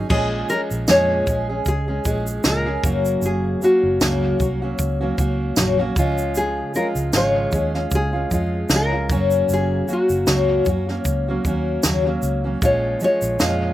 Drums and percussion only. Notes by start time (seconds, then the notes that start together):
0.10 kick, crash
0.49 shaker
0.71 shaker
0.87 snare, tambourine, shaker
1.27 kick, shaker
1.66 kick, shaker
2.05 kick, shaker
2.27 shaker
2.44 snare, tambourine, shaker
2.84 kick, shaker
3.05 shaker
3.22 shaker
3.62 shaker
4.01 snare, tambourine, shaker
4.40 kick, shaker
4.79 kick, shaker
5.18 kick, shaker
5.56 snare, tambourine, shaker
5.96 kick, shaker
6.18 shaker
6.35 shaker
6.74 shaker
6.96 shaker
7.13 snare, tambourine, shaker
7.52 kick, shaker
7.74 snare
7.91 kick, shaker
8.31 kick, shaker
8.69 snare, tambourine, shaker
9.10 kick, shaker
9.31 shaker
9.49 shaker
9.88 shaker
10.09 shaker
10.27 snare, tambourine, shaker
10.65 kick, shaker
10.89 snare
11.05 kick, shaker
11.45 kick, shaker
11.83 snare, tambourine, shaker
12.22 shaker
12.62 kick, shaker
13.00 shaker
13.22 shaker
13.39 snare, tambourine, shaker